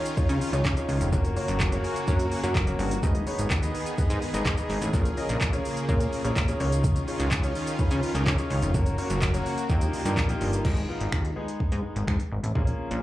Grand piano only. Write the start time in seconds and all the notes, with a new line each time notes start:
Already playing: C#4 D#4 F4 G#4 C#5
0.17 C#4 D#4 F4 G#4 C#5
0.53 C#4 D#4 F4 G#4 C#5
0.77 C#4 D#4 F4 G#4 C#5
1.13 A#3 C#4 F#4 A#4 C#5
1.36 A#3 C#4 F#4 A#4 C#5
1.72 A#3 C#4 F#4 A#4 C#5
1.84 G#5
2.08 A#3 C#4 F#4 A#4 C#5 A#5
2.32 G#5
2.43 A#3 C#4 F#4 A#4 C#5
2.67 A#3 C#4 F#4 A#4 C#5
3.03 B3 D#4 G#4 B4 D#5
3.27 B3 D#4 G#4 B4 C#5
3.62 B3 D#4 G#4 B4 D#5
3.98 B3 D#4 G#4 B4 D#5
4.34 B3 D#4 G#4 B4 D#5
4.58 B3 D#4 G#4 B4 D#5
4.93 C#4 F4 G#4 A#4 C#5
5.17 C#4 F4 G#4 A#4 D#5
5.53 C#4 F4 G#4 A#4 C#5
5.88 C#4 F4 G#4 A#4 C#5
6.24 C#4 F4 G#4 A#4 C#5
6.48 C#4 F4 G#4 A#4 C#5
6.60 C#4 D#4 F4 G#4 C#5
7.08 C#4 D#4 F4 G#4 C#5
7.43 C#4 D#4 F4 G#4 C#5
7.79 C#4 D#4 F4 G#4 B4
8.15 C#4 D#4 F4 G#4 A#4
8.38 C#4 D#4 F4 G#4 C#5
8.74 A#3 C#4 F#4 A#4 C#5
8.98 A#3 C#4 F#4 A#4 C#5
9.33 A#3 C#4 F#4 A#4 C#5
9.70 A#3 D#4 F4 G4 A#4
10.05 A#3 D#4 F4 G4 A#4
10.29 A#3 D#4 F4 G4 A#4
10.64 G#3 B3 D#4 G#4
10.88 G#3 B3 D#4 F4
11.36 G#3 B3 D#4 G#4
12.55 A#3 C#4 F4 G#4